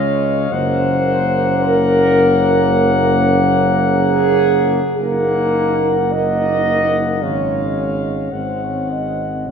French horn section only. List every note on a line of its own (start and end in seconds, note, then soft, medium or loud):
0.00 0.51 C#5 loud
0.52 1.64 C5 loud
1.64 3.32 A#4 loud
3.87 4.94 G#4 loud
4.97 6.13 A#4 medium
6.12 7.22 D#5 loud
7.23 8.32 C#5 medium
8.33 8.60 C5 medium
8.62 8.90 C#5 medium
8.91 9.49 D#5 medium